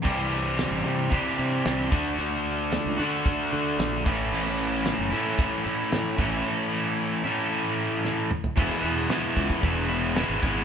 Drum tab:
CC |x---------------|----------------|x---------------|----------------|
HH |--o-o-o-o-o-o-o-|o-o-o-o-o-o-o-o-|--o-o-o-o-o-o-o-|----------------|
SD |----o-------o---|----o-------o---|-o--o-------o---|------------o---|
T2 |----------------|----------------|----------------|--------------o-|
FT |----------------|----------------|----------------|---------------o|
BD |o-------o-----o-|--------o-----o-|--------o-----o-|----------------|

CC |x---------------|
HH |----o---o---o---|
SD |----o-------o---|
T2 |----------------|
FT |----------------|
BD |o-----ooo-----o-|